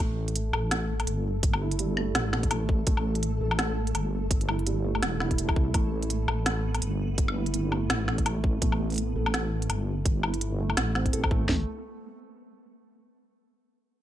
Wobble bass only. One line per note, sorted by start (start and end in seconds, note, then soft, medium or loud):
0.00 0.52 A1 loud
0.53 1.06 A1 medium
1.07 2.14 G1 loud
2.15 2.86 A1 medium
2.87 3.40 A1 loud
3.41 3.93 A1 loud
3.95 5.01 G1 loud
5.02 5.55 E1 medium
5.56 5.73 C2 loud
5.74 6.27 A1 loud
6.28 6.81 A1 loud
6.82 7.89 G1 loud
7.90 8.60 A1 loud
8.62 9.14 A1 loud
9.16 9.68 A1 loud
9.69 10.76 G1 loud
10.77 11.12 A1 medium
11.13 11.48 A1 loud
11.49 11.66 A1 loud